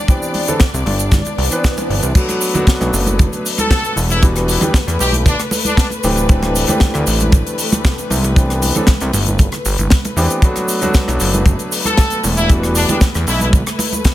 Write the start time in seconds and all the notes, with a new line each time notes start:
Already playing: D4 D5
0.08 E3 B3 C4 D4 G4, kick, closed hi-hat, shaker
0.22 shaker
0.34 open hi-hat, muted conga, high conga
0.48 E3 B3 C4 D4 A4, closed hi-hat, low conga, shaker
0.60 kick, snare, closed hi-hat, shaker
0.74 C2, closed hi-hat, shaker
0.86 G1, open hi-hat, muted conga
0.99 closed hi-hat, shaker
1.11 kick, snare, closed hi-hat, swell, high conga, low conga, shaker
1.25 closed hi-hat, muted conga, shaker
1.38 C2, open hi-hat
1.50 E3 B3 C4 D4 B4, closed hi-hat, shaker
1.64 kick, snare, closed hi-hat, shaker
1.77 closed hi-hat, muted conga, shaker
1.90 G1, open hi-hat
2.03 C2, closed hi-hat, shaker
2.15 F#3 A3 B3 D4 F#4 B4, kick, closed hi-hat, crash, shaker
2.29 cross-stick, closed hi-hat, muted conga, shaker
2.41 open hi-hat, shaker
2.54 F#3 A3 B3 D4 F#4, closed hi-hat, high conga, low conga, shaker
2.67 kick, snare, closed hi-hat, shaker
2.81 B1, cross-stick, closed hi-hat, muted conga, shaker
2.93 F#1, open hi-hat, shaker
3.07 closed hi-hat, high conga, shaker
3.19 kick, closed hi-hat, muted conga, low conga, shaker
3.33 closed hi-hat, shaker
3.46 open hi-hat, shaker
3.58 A4, cross-stick, closed hi-hat, high conga, shaker
3.71 kick, snare, closed hi-hat, muted conga, shaker
3.84 closed hi-hat, shaker
3.96 E1, open hi-hat, high conga, shaker
4.10 E4, closed hi-hat, muted conga, shaker
4.22 E3 G3 B3 D4 F#4, kick, closed hi-hat, shaker
4.36 cross-stick, closed hi-hat, shaker
4.48 open hi-hat, shaker
4.61 E3 G3 B3 D4 G4, closed hi-hat, muted conga, high conga, low conga, shaker
4.74 kick, snare, closed hi-hat, shaker
4.87 E2, cross-stick, closed hi-hat, shaker
4.99 B1 G4, open hi-hat, muted conga, shaker
5.12 closed hi-hat, high conga, shaker
5.26 D4, kick, closed hi-hat, low conga, shaker
5.39 cross-stick, closed hi-hat, shaker
5.51 open hi-hat, muted conga, shaker
5.65 D4, closed hi-hat, high conga, shaker
5.77 D4, kick, snare, closed hi-hat, shaker
5.90 closed hi-hat, muted conga, shaker
6.03 D1 E3 A3 C4 D4 G4, open hi-hat, shaker
6.17 closed hi-hat, shaker
6.29 E3 A3 C4 D4 G4, kick, closed hi-hat, shaker
6.43 cross-stick, closed hi-hat, muted conga, shaker
6.56 open hi-hat, shaker
6.67 E3 A3 C4 D4 G4, closed hi-hat, high conga, low conga, shaker
6.80 kick, snare, closed hi-hat, muted conga, shaker
6.94 D2, cross-stick, closed hi-hat, shaker
7.07 A1, open hi-hat, shaker
7.20 closed hi-hat, high conga, shaker
7.32 kick, closed hi-hat, muted conga, low conga, shaker
7.47 closed hi-hat, shaker
7.58 open hi-hat, shaker
7.72 cross-stick, closed hi-hat, muted conga, high conga, shaker
7.85 kick, snare, closed hi-hat, shaker
7.98 closed hi-hat, shaker
8.10 C2, open hi-hat, high conga, shaker
8.24 closed hi-hat, muted conga, shaker
8.36 E3 B3 C4 D4 G4, kick, closed hi-hat, shaker
8.50 cross-stick, closed hi-hat, shaker
8.62 open hi-hat, muted conga, shaker
8.75 E3 B3 C4 D4 A4, closed hi-hat, high conga, low conga, shaker
8.87 kick, snare, closed hi-hat, shaker
9.00 C2, cross-stick, closed hi-hat, shaker
9.13 G1, open hi-hat, muted conga, shaker
9.27 closed hi-hat, high conga, shaker
9.39 kick, closed hi-hat, low conga, shaker
9.52 cross-stick, closed hi-hat, muted conga, shaker
9.65 G1, open hi-hat, shaker
9.78 G1, closed hi-hat, high conga, shaker
9.90 kick, snare, closed hi-hat, shaker
10.05 closed hi-hat, muted conga, shaker
10.16 E2 E3 B3 C4 D4 G4, open hi-hat, shaker
10.30 closed hi-hat, shaker
10.42 F#3 A3 B3 D4 F#4 B4, kick, closed hi-hat, shaker
10.56 cross-stick, closed hi-hat, muted conga, shaker
10.68 open hi-hat, shaker
10.81 F#3 A3 B3 D4 F#4, closed hi-hat, high conga, low conga, shaker
10.94 kick, snare, closed hi-hat, shaker
11.08 B1, cross-stick, closed hi-hat, muted conga, shaker
11.20 F#1, open hi-hat, shaker
11.34 closed hi-hat, high conga, shaker
11.46 kick, closed hi-hat, muted conga, low conga, shaker
11.59 closed hi-hat, shaker
11.72 open hi-hat, shaker
11.85 A4, cross-stick, closed hi-hat, high conga, shaker
11.97 kick, snare, closed hi-hat, muted conga, shaker
12.10 closed hi-hat, shaker
12.23 E1, open hi-hat, high conga, shaker
12.37 E4, closed hi-hat, muted conga, shaker
12.49 E3 G3 B3 D4 F#4, kick, closed hi-hat, shaker
12.63 cross-stick, closed hi-hat, shaker
12.75 D4, open hi-hat, shaker
12.89 E3 G3 B3 D4 G4, closed hi-hat, muted conga, high conga, low conga, shaker
13.01 kick, snare, closed hi-hat, shaker
13.14 E2, cross-stick, closed hi-hat, shaker
13.27 B1 E4, open hi-hat, muted conga, shaker
13.40 E4, closed hi-hat, high conga, shaker
13.53 kick, closed hi-hat, low conga, shaker
13.66 cross-stick, closed hi-hat, shaker
13.79 open hi-hat, muted conga, shaker
13.93 closed hi-hat, high conga, shaker
14.04 kick, snare, closed hi-hat, shaker